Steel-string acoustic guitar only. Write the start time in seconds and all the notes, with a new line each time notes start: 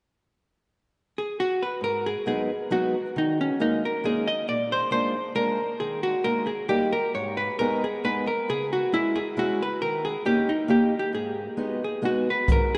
1.81 G#2
2.26 F#3 G#3 B3 D#4
2.71 F#3 G#3 B3 D#4
3.16 D#3
3.60 G#3 A#3 C#4 D#4
4.04 G#3 A#3 C#4 D#4
4.48 A#2
4.91 G#3 A#3 D4 F4
5.35 G#3 A#3 D4 F4
5.80 D#3
6.24 G#3 A#3 D#4 G#4
6.68 G3 A#3 D#4 G4
7.14 G#2
7.60 G#3 B3 D#4 G#4
8.04 G#3 B3 D#4 G#4
8.49 C#3
8.93 G#3 C#4 E4 G#4
9.37 G#3 C#4 E4 G#4
9.81 D#3
10.25 A#3 C#4 D#4 G4
10.68 A#3 C#4 D#4 G4
11.13 G#2
11.57 G#3 B3 D#4 F#4
12.02 G#3 B3 D#4 F#4
12.48 G#2